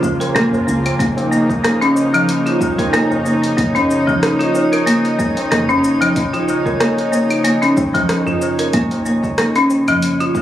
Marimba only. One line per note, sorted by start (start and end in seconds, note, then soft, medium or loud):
0.20 0.34 A#4 medium
0.35 0.45 A#3 loud
0.67 0.84 A#3 medium
0.99 1.10 A#3 loud
1.32 1.49 A#3 medium
1.64 1.81 A#3 medium
1.81 1.90 C#4 loud
2.14 2.28 F3 loud
2.46 2.60 F4 medium
2.78 2.92 A#4 medium
2.93 3.03 A#3 loud
3.25 3.42 A#3 medium
3.57 3.74 A#3 medium
3.75 3.83 C#4 loud
4.07 4.21 F3 loud
4.39 4.53 F4 medium
4.72 4.86 A#4 medium
4.86 4.97 A#3 loud
5.19 5.36 A#3 medium
5.51 5.68 A#3 medium
5.69 5.77 C#4 loud
6.01 6.15 F3 medium
6.33 6.47 F4 medium
6.66 6.79 A#4 medium
6.80 6.90 A#3 loud
7.12 7.29 A#3 medium
7.44 7.61 A#3 medium
7.62 7.71 C#4 loud
7.94 8.08 F3 loud
8.27 8.41 F4 medium
8.59 8.73 A#4 medium
8.74 8.84 A#3 loud
9.06 9.23 A#3 medium
9.38 9.55 A#3 medium
9.56 9.64 C#4 loud
9.88 10.02 F3 loud
10.20 10.34 F4 medium